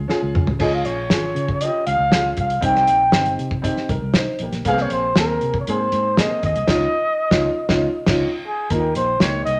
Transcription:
0.08 0.45 C#4 medium
0.08 0.45 F4 medium
0.08 0.46 G#4 medium
0.08 snare medium
0.22 0.33 C#2 medium
0.35 0.57 C#3 medium
0.35 mid tom medium
0.47 floor tom medium
0.59 0.82 C#2 loud
0.59 0.95 C#4 medium
0.59 0.96 F4 medium
0.59 0.96 G#4 loud
0.59 0.76 D#5 medium
0.59 kick loud
0.59 crash medium
0.74 0.87 F5 medium
0.85 1.07 A#1 medium
0.85 1.63 C#5 loud
0.85 closed hi-hat medium
1.10 1.33 G#1 medium
1.10 1.47 C#4 medium
1.10 1.47 F4 medium
1.10 1.47 G#4 medium
1.10 snare loud
1.10 closed hi-hat medium
1.35 1.68 C#3 loud
1.35 closed hi-hat medium
1.48 kick loud
1.61 1.97 C#4 medium
1.61 1.98 F4 medium
1.61 1.98 G4 medium
1.61 1.86 D#5 medium
1.61 closed hi-hat medium
1.87 1.98 C#2 medium
1.87 2.34 F5 loud
1.87 closed hi-hat medium
1.99 2.32 C#2 medium
2.10 2.47 C#4 medium
2.10 2.47 F4 medium
2.10 2.48 G#4 medium
2.10 snare loud
2.10 closed hi-hat medium
2.37 2.59 C2 medium
2.37 2.62 F5 medium
2.37 kick loud
2.37 closed hi-hat medium
2.50 closed hi-hat medium
2.61 2.84 C2 loud
2.61 2.98 C4 medium
2.61 2.98 D#4 medium
2.61 2.99 G4 loud
2.61 3.36 G5 loud
2.61 kick loud
2.61 closed hi-hat medium
2.76 snare soft
2.87 3.10 A#1 loud
2.87 closed hi-hat medium
3.12 3.36 G1 medium
3.12 3.49 C4 medium
3.12 3.49 D#4 medium
3.12 3.50 G4 medium
3.12 snare loud
3.12 closed hi-hat medium
3.26 closed hi-hat soft
3.39 3.72 C3 loud
3.39 closed hi-hat medium
3.51 kick loud
3.62 3.88 C4 medium
3.62 3.89 D#4 medium
3.62 3.89 G4 loud
3.62 kick medium
3.62 closed hi-hat medium
3.77 snare soft
3.89 4.00 C2 medium
3.89 4.14 A#4 medium
3.89 kick loud
3.89 closed hi-hat medium
4.02 4.24 C2 loud
4.14 4.39 D#4 medium
4.14 4.39 C5 medium
4.14 snare loud
4.14 closed hi-hat medium
4.39 4.51 A#1 medium
4.39 4.89 G4 medium
4.39 closed hi-hat medium
4.43 4.64 A#3 medium
4.52 4.64 A#1 medium
4.52 snare soft
4.52 closed hi-hat medium
4.65 4.87 C2 loud
4.65 5.01 A#3 medium
4.65 4.72 B3 medium
4.65 5.03 G#4 loud
4.65 4.84 F5 loud
4.65 kick loud
4.65 closed hi-hat medium
4.73 5.05 C4 medium
4.77 snare soft
4.82 4.95 C#5 medium
4.90 5.12 A#1 medium
4.90 5.17 C5 loud
4.90 closed hi-hat medium
5.15 5.38 D#2 medium
5.15 5.52 A#3 medium
5.15 5.52 C4 medium
5.15 5.52 G#4 medium
5.15 5.58 A#4 loud
5.15 snare loud
5.15 closed hi-hat medium
5.41 5.64 C3 loud
5.41 closed hi-hat medium
5.54 kick loud
5.60 5.71 C#5 medium
5.67 5.89 G#2 medium
5.67 6.04 A#3 medium
5.67 6.04 C4 medium
5.67 6.04 G#4 medium
5.67 6.22 C5 loud
5.67 closed hi-hat medium
5.92 6.25 G#2 medium
5.92 closed hi-hat medium
6.17 6.54 A#3 medium
6.17 6.54 C4 medium
6.17 6.54 G#4 medium
6.17 6.44 D#5 medium
6.17 snare loud
6.17 closed hi-hat medium
6.43 6.54 D#2 medium
6.43 8.17 D#5 loud
6.43 kick loud
6.43 closed hi-hat medium
6.56 6.67 C2 medium
6.56 closed hi-hat medium
6.67 6.85 C#2 loud
6.67 6.85 C#4 medium
6.67 6.86 D#4 loud
6.67 6.86 F4 loud
6.67 kick loud
6.67 snare loud
6.67 crash medium
7.30 7.49 C#2 medium
7.30 7.48 C#4 loud
7.30 7.48 D#4 loud
7.30 7.49 F4 loud
7.30 kick loud
7.30 snare loud
7.69 7.86 C#2 loud
7.69 7.86 C#4 medium
7.69 7.87 D#4 medium
7.69 7.88 F4 loud
7.69 kick loud
7.69 snare loud
8.06 8.24 C#2 loud
8.06 8.25 C#4 medium
8.06 8.25 D#4 loud
8.06 8.26 F4 medium
8.06 kick loud
8.06 snare loud
8.06 crash medium
8.47 8.73 G#4 medium
8.70 8.93 D#2 medium
8.70 9.07 A#3 medium
8.70 9.08 D#4 medium
8.70 8.78 F4 medium
8.70 8.96 A#4 medium
8.70 kick loud
8.70 closed hi-hat medium
8.79 9.11 G4 medium
8.95 9.18 A#1 medium
8.95 9.23 C5 loud
8.95 closed hi-hat medium
9.20 9.43 C#2 medium
9.20 9.58 A#3 medium
9.20 9.58 D#4 medium
9.20 9.59 G4 medium
9.20 9.44 C#5 loud
9.20 snare loud
9.20 closed hi-hat medium
9.44 9.60 C2 loud
9.44 9.60 D#5 loud
9.44 closed hi-hat medium

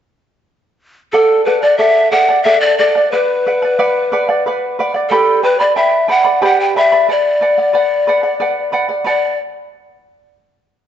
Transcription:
1.13 1.44 A4 medium
1.13 1.45 A4 medium
1.13 1.46 D5 medium
1.13 1.46 F#5 medium
1.45 1.63 A4 soft
1.45 1.63 B4 medium
1.45 1.63 D5 medium
1.45 1.62 F#5 medium
1.62 1.79 D5 medium
1.62 1.78 D5 soft
1.62 1.79 F#5 soft
1.78 2.10 A4 soft
1.78 2.11 D5 soft
1.78 2.11 E5 medium
1.78 2.12 F#5 medium
2.11 2.29 A4 soft
2.11 2.29 D5 medium
2.11 2.43 F#5 medium
2.11 2.28 F#5 medium
2.29 2.45 D5 soft
2.29 2.45 F#5 soft
2.43 2.78 A4 medium
2.43 2.79 D5 medium
2.43 2.62 E5 medium
2.43 2.79 F#5 medium
2.61 2.78 D5 medium
2.78 2.96 A4 medium
2.78 3.13 D5 medium
2.78 2.96 D5 soft
2.78 2.94 F#5 medium
2.95 3.12 D5 soft
2.95 3.12 F#5 soft
3.12 4.77 B4 medium
3.12 3.45 B4 medium
3.12 3.46 D5 medium
3.12 3.46 F#5 medium
3.47 3.62 B4 medium
3.47 3.63 D5 soft
3.47 3.61 F#5 medium
3.62 3.78 D5 soft
3.62 3.79 F#5 soft
3.79 4.11 B4 medium
3.79 4.11 D5 medium
3.79 4.12 F#5 medium
4.12 4.28 B4 medium
4.12 4.29 D5 medium
4.12 4.28 F#5 medium
4.29 4.45 D5 soft
4.29 4.45 F#5 medium
4.46 4.78 B4 medium
4.46 4.79 D5 medium
4.46 4.79 F#5 medium
4.79 4.95 B4 medium
4.79 4.95 D5 medium
4.79 4.93 F#5 medium
4.94 5.11 D5 soft
4.94 5.11 F#5 soft
5.10 5.44 G4 medium
5.10 5.45 A4 medium
5.10 5.43 B4 medium
5.10 5.43 D5 medium
5.10 5.42 G5 medium
5.10 5.43 B5 medium
5.43 5.61 B4 medium
5.43 5.60 B4 soft
5.43 5.59 D5 medium
5.43 5.60 G5 soft
5.43 5.59 B5 medium
5.60 5.75 B4 soft
5.60 5.75 D5 medium
5.60 5.76 D5 soft
5.60 5.77 B5 soft
5.76 6.07 B4 medium
5.76 6.07 D5 soft
5.76 6.07 E5 medium
5.76 6.07 G5 soft
5.76 6.08 B5 medium
6.08 6.25 B4 medium
6.08 6.24 D5 medium
6.08 6.41 F#5 medium
6.08 6.25 G5 medium
6.08 6.23 B5 medium
6.24 6.41 B4 soft
6.24 6.41 D5 soft
6.24 6.42 B5 soft
6.42 6.75 G4 medium
6.42 6.75 B4 medium
6.42 6.75 D5 medium
6.42 6.62 F#5 medium
6.42 6.75 G5 medium
6.42 6.76 B5 medium
6.60 6.76 G5 medium
6.76 6.92 B4 medium
6.76 6.92 D5 medium
6.76 7.07 E5 medium
6.76 6.93 G5 soft
6.76 6.91 B5 medium
6.92 7.07 B4 soft
6.92 7.08 D5 soft
6.92 7.09 B5 soft
7.08 7.40 B4 soft
7.08 7.41 D5 medium
7.08 8.71 D5 medium
7.08 7.41 F#5 medium
7.41 7.58 B4 medium
7.41 7.58 D5 medium
7.41 7.57 F#5 medium
7.58 7.73 D5 soft
7.58 7.73 F#5 soft
7.73 8.06 B4 medium
7.73 8.07 D5 medium
7.73 8.08 F#5 medium
8.07 8.24 B4 medium
8.07 8.23 D5 medium
8.07 8.22 F#5 medium
8.23 8.39 D5 soft
8.23 8.40 F#5 medium
8.40 8.71 B4 medium
8.40 8.72 D5 medium
8.40 8.72 F#5 medium
8.72 8.90 B4 medium
8.72 8.89 D5 medium
8.72 8.88 F#5 medium
8.89 9.05 D5 soft
8.89 9.06 F#5 soft
9.04 9.32 B4 medium
9.04 9.33 D5 medium
9.04 9.38 D5 medium
9.04 9.33 F#5 medium

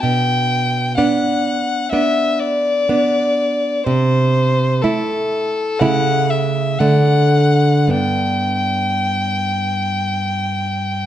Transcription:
0.02 0.95 B2 soft
0.02 0.95 G5 medium
0.97 1.88 B3 soft
0.97 1.89 D4 soft
0.97 1.90 F#5 medium
1.91 2.85 B3 soft
1.91 2.86 D4 soft
1.91 2.41 E5 medium
2.39 3.85 D5 medium
2.89 3.82 B3 soft
2.89 3.83 D4 soft
3.86 4.80 C3 soft
3.86 4.83 C5 medium
4.82 5.77 A3 soft
4.82 5.77 E4 soft
4.82 5.81 A4 medium
5.80 6.77 C#3 soft
5.80 6.76 A3 soft
5.80 6.77 E4 soft
5.80 6.31 F#5 medium
6.30 6.80 E5 medium
6.79 7.88 D3 medium
6.79 7.87 A3 soft
6.79 7.87 D4 soft
6.79 7.91 F#5 medium
7.87 11.06 G2 soft
7.87 11.06 B3 soft
7.87 11.06 D4 soft
7.87 11.06 G5 medium

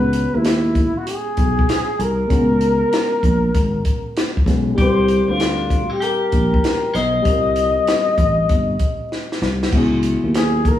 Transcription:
0.00 0.25 C#2 medium
0.00 2.25 G#3 medium
0.00 2.28 B3 medium
0.00 2.26 C#4 medium
0.00 2.27 F#4 medium
0.00 0.37 B4 medium
0.13 closed hi-hat medium
0.35 0.86 D#2 medium
0.35 0.99 E4 medium
0.45 snare loud
0.45 closed hi-hat medium
0.75 kick medium
0.75 closed hi-hat medium
0.97 1.07 F#4 medium
1.07 2.03 G#4 medium
1.07 closed hi-hat medium
1.37 1.63 B1 medium
1.37 kick medium
1.37 closed hi-hat medium
1.59 kick medium
1.69 snare medium
1.69 closed hi-hat medium
1.99 2.25 C2 medium
1.99 4.48 A#4 medium
1.99 closed hi-hat medium
2.27 2.82 C#2 medium
2.27 4.41 G#3 medium
2.27 4.42 C#4 medium
2.27 kick medium
2.27 closed hi-hat medium
2.32 4.45 B3 medium
2.32 4.43 F#4 medium
2.61 closed hi-hat medium
2.93 snare loud
2.93 closed hi-hat medium
3.23 3.49 A#1 medium
3.23 kick medium
3.23 closed hi-hat medium
3.55 3.80 G#1 medium
3.55 kick medium
3.55 closed hi-hat medium
3.85 kick medium
3.85 closed hi-hat medium
4.17 snare loud
4.17 closed hi-hat medium
4.37 kick medium
4.45 4.72 B1 medium
4.45 4.77 G#3 medium
4.45 4.78 C#4 medium
4.45 4.78 F#4 medium
4.45 4.79 B4 medium
4.45 kick medium
4.45 snare soft
4.45 closed hi-hat medium
4.75 5.20 C2 medium
4.75 7.20 G3 medium
4.75 7.21 C4 medium
4.75 5.28 G4 medium
4.75 kick loud
4.75 closed hi-hat medium
4.79 7.22 F4 medium
4.79 7.23 A#4 medium
4.79 5.32 C5 medium
5.08 closed hi-hat medium
5.28 5.80 D2 medium
5.28 5.90 D4 medium
5.28 5.94 F4 medium
5.40 snare loud
5.40 closed hi-hat loud
5.70 kick medium
5.70 closed hi-hat medium
5.90 6.01 D#4 medium
5.90 6.04 G4 medium
6.00 6.93 G4 medium
6.00 6.97 A#4 medium
6.00 closed hi-hat medium
6.32 6.58 A#1 medium
6.32 kick medium
6.32 closed hi-hat medium
6.54 kick medium
6.64 snare loud
6.64 closed hi-hat medium
6.93 7.20 B1 medium
6.93 9.41 C5 medium
6.93 9.42 D#5 loud
6.93 snare soft
6.93 closed hi-hat medium
7.22 7.77 C2 medium
7.22 9.67 G3 medium
7.22 9.68 C4 medium
7.22 kick medium
7.22 closed hi-hat medium
7.26 9.69 F4 medium
7.26 9.70 A#4 medium
7.56 closed hi-hat medium
7.88 snare loud
7.88 closed hi-hat loud
8.18 8.44 A1 medium
8.18 kick medium
8.18 closed hi-hat medium
8.49 8.75 G1 loud
8.49 kick medium
8.49 closed hi-hat medium
8.79 kick medium
8.79 closed hi-hat medium
9.12 snare medium
9.32 snare medium
9.42 9.67 C2 medium
9.42 snare medium
9.63 snare medium
9.69 10.15 C#2 loud
9.69 10.79 F#3 medium
9.69 10.79 B3 medium
9.69 kick loud
9.69 crash medium
9.74 10.79 E4 medium
9.74 10.79 G#4 medium
10.03 closed hi-hat medium
10.24 10.75 D#2 medium
10.34 10.69 G#4 loud
10.34 snare loud
10.34 closed hi-hat loud
10.65 10.79 A#4 medium
10.65 kick medium
10.65 closed hi-hat medium

